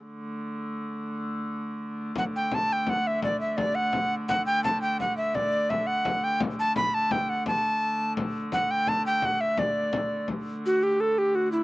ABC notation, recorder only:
X:1
M:6/8
L:1/8
Q:3/8=113
K:D
V:1 name="Recorder"
z6 | z6 | f g a g f e | d e d f2 z |
f g a g f e | d2 e f2 g | z a b a g f | a4 z2 |
f g a g f e | d4 z2 | F G A G F E |]